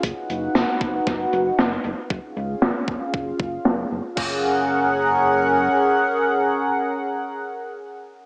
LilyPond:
<<
  \new Staff \with { instrumentName = "Analog synth pad" } { \time 4/4 \key fis \major \tempo 4 = 116 <dis' fis' b' fis''>1 | <cis' eis' gis' eis''>1 | <cis' gis' ais' fis''>1~ | <cis' gis' ais' fis''>1 | }
  \new Staff \with { instrumentName = "Analog synth bass" } { \clef bass \time 4/4 \key fis \major fis,,8 fis,,8 fis,,8 fis,,8 fis,,8 fis,,8 fis,,8 fis,,8 | fis,,8 cis,8 fis,,8 fis,,8 fis,,8 fis,,8 fis,,8 fis,,8 | fis,,2. r4 | r1 | }
  \new DrumStaff \with { instrumentName = "Drums" } \drummode { \time 4/4 <hh bd>8 hh8 <hh sn>8 <hh bd>8 <hh bd sn>8 hh8 <hh sn>8 hh8 | <hh bd>8 hh8 <hh sn>8 <hh bd>8 <hh bd>8 <hh bd>8 <hh sn>8 hh8 | <cymc bd>4 r4 r4 r4 | r4 r4 r4 r4 | }
>>